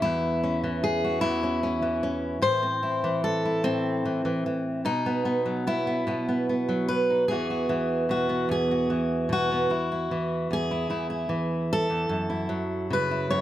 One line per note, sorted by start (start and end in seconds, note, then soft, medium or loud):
0.00 0.63 E3 soft
0.00 0.82 E4 medium
0.04 1.22 E2 medium
0.43 1.42 C#4 soft
0.64 1.81 E3 medium
0.84 1.21 G#4 medium
1.04 2.42 F#4 soft
1.21 2.41 E2 medium
1.21 2.42 E4 medium
1.43 1.62 C#4 soft
1.63 2.02 C#4 soft
1.82 3.03 E3 medium
2.03 2.38 C#4 soft
2.42 3.63 A2 medium
2.42 3.23 C5 loud
2.63 3.63 C4 soft
2.83 3.43 E4 soft
3.04 4.04 E3 medium
3.24 4.44 A4 medium
3.45 4.80 E4 soft
3.64 4.80 A2 medium
3.64 4.84 C4 medium
4.05 4.24 E3 soft
4.25 4.44 E3 medium
4.46 4.85 E3 soft
4.85 6.06 B2 medium
4.85 5.66 D#4 medium
5.06 5.24 B3 soft
5.25 5.65 B3 soft
5.46 6.67 F#3 medium
5.67 5.86 B3 soft
5.67 6.88 E4 medium
5.87 6.06 B3 soft
6.07 7.28 B2 medium
6.07 6.27 B3 soft
6.29 6.48 B3 soft
6.49 7.24 B3 soft
6.69 7.24 F#3 medium
6.88 7.28 B4 medium
7.10 7.24 D#4 soft
7.28 8.48 E2 medium
7.28 7.69 E3 soft
7.28 8.28 B3 soft
7.28 7.49 F#4 soft
7.28 8.09 G#4 medium
7.50 8.09 F#4 soft
7.69 8.89 E3 medium
8.09 8.90 B2 medium
8.09 8.50 F#4 medium
8.29 9.50 B3 soft
8.49 9.69 E2 medium
8.49 9.31 G#4 medium
8.71 9.31 F#4 soft
8.90 10.11 E3 medium
9.29 9.70 B2 soft
9.29 10.52 F#4 medium
9.52 9.66 B3 soft
9.70 10.49 E2 medium
9.70 9.91 E4 soft
9.92 10.71 E4 soft
10.11 11.28 E3 medium
10.51 10.89 E2 medium
10.51 11.72 G#4 medium
10.71 10.90 E4 soft
10.90 11.89 E2 medium
10.90 11.09 E4 soft
11.10 12.05 E4 soft
11.29 12.49 E3 medium
11.73 12.91 A4 medium
11.90 12.09 E2 medium
12.09 13.29 F#2 medium
12.30 13.10 E4 soft
12.49 13.41 F#3 medium
12.90 13.41 C#3 medium
12.90 13.41 B4 medium
13.11 13.41 E4 soft
13.30 13.41 F#2 medium
13.30 13.41 C#5 medium